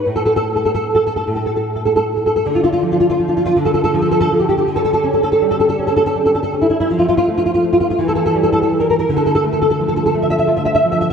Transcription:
\new Staff \with { instrumentName = "Nylon-string guitar" } { \time 6/8 \key d \minor \tempo 4. = 54 << { r32 a'32 a'32 a'32 r32 a'32 a'32 a'32 r32 a'32 a'32 a'32 r32 a'32 a'32 a'32 r32 a'32 a'32 a'32 r32 a'32 a'32 a'32 | r32 f'32 f'32 f'32 r32 f'32 f'32 f'32 r32 f'32 f'32 f'32 r32 a'32 a'32 a'32 r32 a'32 a'32 a'32 r32 g'32 g'32 g'32 | r32 a'32 a'32 a'32 r32 a'32 a'32 a'32 r32 a'32 a'32 a'32 r32 a'32 a'32 a'32 r32 a'32 a'32 a'32 r32 e'32 e'32 e'32 | r32 f'32 f'32 f'32 r32 f'32 f'32 f'32 r32 f'32 f'32 f'32 r32 a'32 a'32 a'32 r32 a'32 a'32 a'32 r32 bes'32 bes'32 bes'32 |
r32 a'32 a'32 a'32 r32 a'32 a'32 a'32 r32 a'32 a'32 a'32 r32 e''32 e''32 e''32 r32 e''32 e''32 e''32 r32 e''32 e''32 r32 | } \\ { a,4. a,4. | d8 f8 f8 d8 f8 f8 | d8 cis'8 g8 cis'8 g8 cis'8 | f8 a8 a8 e8 g8 g8 |
d8 a8 f8 a8 f'8 f8 | } >> }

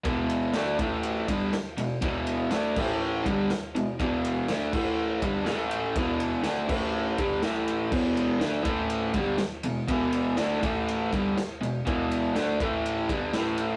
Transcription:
<<
  \new Staff \with { instrumentName = "Overdriven electric guitar" } { \clef bass \time 4/4 \key a \major \tempo 4 = 122 <e, b, e>4 <d a d'>8 <a, e a>4 <g, d g>8 r8 <e, b,>8 | <e, b, e>4 <d a d'>8 <a, e a>4 <g, d g>8 r8 <e, b,>8 | <e, b, e>4 <d a d'>8 <a, e a>4 <g, d g>8 <a, e a>4 | <e, b, e>4 <d a d'>8 <a, e a>4 <g, d g>8 <a, e a>4 |
<e, b, e>4 <d a d'>8 <a, e a>4 <g, d g>8 r8 <e, b,>8 | <e, b, e>4 <d a d'>8 <a, e a>4 <g, d g>8 r8 <e, b,>8 | <e, b, e>4 <d a d'>8 <a, e a>4 <g, d g>8 <a, e a>4 | }
  \new DrumStaff \with { instrumentName = "Drums" } \drummode { \time 4/4 <bd cymr>8 cymr8 <cymr sn>8 <bd cymr>8 cymr8 <bd cymr>8 <cymr sn>8 cymr8 | <bd cymr>8 cymr8 <cymr sn>8 <cymc bd>8 r8 <bd cymr>8 <cymr sn>8 cymr8 | <bd cymr>8 cymr8 <cymr sn>8 <cymc bd>8 r8 <bd cymr>8 <cymr sn>8 cymr8 | <bd cymr>8 cymr8 <cymr sn>8 <cymc bd>8 r8 <bd cymr>8 <cymr sn>8 cymr8 |
<cymc bd>8 cymr8 <cymr sn>8 <bd cymr>8 cymr8 <bd cymr>8 <cymr sn>8 cymr8 | <bd cymr>8 cymr8 <cymr sn>8 <bd cymr>8 cymr8 <bd cymr>8 <cymr sn>8 cymr8 | <bd cymr>8 cymr8 <cymr sn>8 <bd cymr>8 cymr8 <bd cymr>8 <cymr sn>8 cymr8 | }
>>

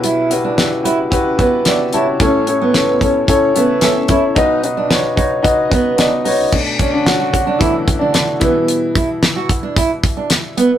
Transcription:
<<
  \new Staff \with { instrumentName = "Upright piano" } { \time 4/4 \key e \dorian \tempo 4 = 111 <e' fis' g' b'>8 <e' fis' g' b'>8 <e' fis' g' b'>8 <e' fis' g' b'>8 <e' fis' g' b'>8 <e' fis' g' b'>8 <e' fis' g' d'' e''>8 <e' fis' g' cis'' a''>8 | <cis' e' a' cis''>8 <cis' e' a' cis''>8 <cis' e' a' cis''>8 <cis' e' a' cis''>8 <cis' e' a' cis''>8 <cis' e' a' e''>8 <cis' e' a' e''>8 <cis' e' a' cis''>8 | <dis' fis' b' dis''>8 <dis' fis' b' dis''>8 <dis' fis' b' cis''>8 <dis' fis' b' cis''>8 <dis' fis' b' dis''>8 <dis' fis' b' dis''>8 <dis' fis' b' dis''>8 <dis' fis' b' cis''>8 | r8 <cis cis'>16 <d d'>16 <fis fis'>8 <fis fis'>8 <e e'>8. <d d'>16 <d d'>8 <e e'>8~ |
<e e'>2.~ <e e'>8 r8 | }
  \new Staff \with { instrumentName = "Upright piano" } { \clef bass \time 4/4 \key e \dorian <b,, b,>2.~ <b,, b,>8 r8 | <a,, a,>1 | <b,, b,>1 | <b, a d'>4. r8 <b, a d'>8 r4 <b, g b>8~ |
<b, g b>4 r2. | }
  \new Staff \with { instrumentName = "Steel-string acoustic guitar" } { \time 4/4 \key e \dorian e'8 r16 d'8 r16 e'16 r8. b8 d'16 r16 e'16 r16 | cis'8 r16 b8 r16 cis'16 r8. b8 cis'16 r16 e'16 r16 | dis'8 r16 d'8 r16 dis'16 r8. b8 d'16 r16 dis'16 r16 | r8 d'16 r8 fis'16 r16 d'16 e'16 r8 d'16 r8 b16 r16 |
r8 e'16 r8 fis'16 r16 d'16 e'16 r8 d'16 r8 b16 r16 | }
  \new DrumStaff \with { instrumentName = "Drums" } \drummode { \time 4/4 hh8 hh8 <hh sn>8 hh8 <hh bd>8 <hh bd>8 <hh sn>8 hh8 | <hh bd>8 hh8 <hh sn>8 <hh bd>8 <hh bd>8 hh8 <hh sn>8 <hh bd>8 | <hh bd>8 hh8 <hh sn>8 <hh bd>8 <hh bd>8 <hh bd>8 <hh sn>8 hho8 | <cymc bd>8 <hh bd>8 <hh sn>8 <hh bd>8 <hh bd>8 <hh bd>8 <hh sn>8 <hh bd>8 |
hh8 <hh bd>8 <hh sn>8 <hh bd>8 <hh bd>8 <hh bd>8 <hh sn>8 hh8 | }
>>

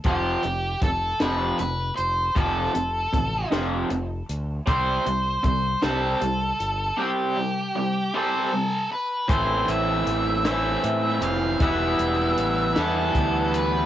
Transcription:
<<
  \new Staff \with { instrumentName = "Lead electric guitar" } { \time 6/8 \key f \lydian \tempo 4. = 52 g'4 a'8 b'8 b'8 c''8 | a'4. r4. | c''4 c''8 a'4. | g'4. a'4 b'8 |
c''8 e''4 e''4 f''8 | e''4. a'4 b'8 | }
  \new Staff \with { instrumentName = "Overdriven electric guitar" } { \clef bass \time 6/8 \key f \lydian <f, c f>8 <f, c>8 <f, c>8 <f, c f>8 <f, c>8 r8 | <f, c f>8 <f, c>8 <f, c>8 <f, c f>8 <f, c>8 r8 | <c g c'>8 <c g>8 <c g>8 <c g c'>8 <c g>8 r8 | <c g c'>8 <c g>8 <c g>8 <c g c'>8 <c g>8 r8 |
<a, e a c' e'>4. <a, e a c' e'>4. | <e g b e'>4. <e g b e'>4. | }
  \new Staff \with { instrumentName = "Fingered electric bass" } { \clef bass \time 6/8 \key f \lydian f,,8 f,,8 f,,8 f,,8 f,,8 f,,8 | f,,8 f,,8 a,,8 f,,8 f,,8 d,8 | c,8 c,8 c,8 c,8 c,8 g,,8 | r2. |
a,,8 a,,8 a,,4 a,8 f,,8 | e,,8 e,,8 a,,8 e,8 d,4 | }
  \new DrumStaff \with { instrumentName = "Drums" } \drummode { \time 6/8 <hh bd>8 hh8 <hh bd>8 <hh sn>8 hh8 hh8 | <hh bd>8 hh8 <hh bd>8 <hh sn>8 hh8 hh8 | <hh bd>8 hh8 <hh bd>8 <hh sn>8 hh8 hh8 | r4. r4. |
<hh bd>8 hh8 hh8 <hh sn>8 hh8 hh8 | <hh bd>8 hh8 hh8 <hh sn>8 <hh bd>8 hh8 | }
>>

